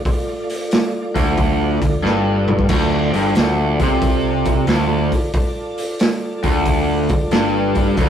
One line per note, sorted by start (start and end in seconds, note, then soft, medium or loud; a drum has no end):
0.05 2.67 A3 medium
0.05 2.67 F4 medium
0.05 2.67 D5 medium
0.05 kick medium
0.05 open hi-hat medium
0.50 open hi-hat medium
0.71 snare loud
0.71 open hi-hat medium
1.15 1.77 D1 medium
1.15 1.80 D2 loud
1.15 kick medium
1.15 open hi-hat medium
1.38 kick loud
1.38 open hi-hat medium
1.81 2.02 D1 medium
1.81 1.99 D2 medium
1.81 kick medium
1.81 open hi-hat medium
2.03 2.65 G1 medium
2.03 2.69 G2 loud
2.03 snare medium
2.48 mid tom medium
2.59 kick medium
2.69 3.10 D1 medium
2.69 3.12 D2 medium
2.69 5.32 F4 medium
2.69 5.32 A4 medium
2.69 5.32 D5 medium
2.69 kick loud
2.69 open hi-hat medium
2.69 crash medium
3.13 3.34 G1 medium
3.13 3.35 G2 medium
3.13 open hi-hat soft
3.35 3.77 D1 medium
3.35 3.79 D2 medium
3.35 snare loud
3.35 open hi-hat medium
3.80 4.64 C2 medium
3.80 4.68 C3 medium
3.80 kick medium
3.80 open hi-hat medium
4.02 kick loud
4.02 open hi-hat medium
4.45 kick medium
4.45 open hi-hat medium
4.67 5.09 D1 medium
4.67 5.11 D2 loud
4.67 snare medium
4.67 open hi-hat medium
5.12 kick medium
5.12 open hi-hat medium
5.34 7.96 F4 medium
5.34 7.96 A4 medium
5.34 7.96 D5 medium
5.34 kick loud
5.34 open hi-hat medium
5.78 open hi-hat medium
5.99 snare loud
5.99 open hi-hat medium
6.43 7.06 D1 medium
6.43 7.09 D2 medium
6.43 kick medium
6.43 open hi-hat medium
6.66 kick medium
6.66 open hi-hat medium
7.09 7.30 D1 medium
7.09 7.28 D2 medium
7.09 kick medium
7.09 open hi-hat medium
7.31 7.95 G1 medium
7.31 7.97 G2 loud
7.31 snare loud
7.31 open hi-hat medium
7.75 kick medium
7.75 open hi-hat soft
7.97 8.09 D1 loud
7.97 8.09 D2 loud
7.97 8.09 A4 medium
7.97 8.09 D5 medium
7.97 8.09 F5 medium
7.97 kick loud
7.97 open hi-hat medium